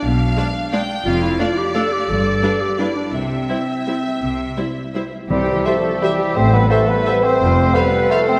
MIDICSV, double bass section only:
0, 0, Header, 1, 2, 480
1, 0, Start_track
1, 0, Key_signature, 0, "major"
1, 0, Tempo, 342075
1, 49, Time_signature, 3, 2, 24, 8
1, 3412, Tempo, 359497
1, 8212, Tempo, 347222
1, 11489, End_track
2, 0, Start_track
2, 0, Title_t, "Double bass section"
2, 0, Program_c, 0, 48
2, 45, Note_on_c, 0, 35, 51
2, 417, Note_off_c, 0, 35, 0
2, 1487, Note_on_c, 0, 29, 59
2, 1854, Note_off_c, 0, 29, 0
2, 2926, Note_on_c, 0, 31, 57
2, 3305, Note_off_c, 0, 31, 0
2, 4354, Note_on_c, 0, 36, 46
2, 4732, Note_off_c, 0, 36, 0
2, 5802, Note_on_c, 0, 36, 37
2, 6175, Note_off_c, 0, 36, 0
2, 7249, Note_on_c, 0, 36, 53
2, 7639, Note_off_c, 0, 36, 0
2, 8681, Note_on_c, 0, 33, 56
2, 9075, Note_off_c, 0, 33, 0
2, 10127, Note_on_c, 0, 29, 60
2, 10519, Note_off_c, 0, 29, 0
2, 11489, End_track
0, 0, End_of_file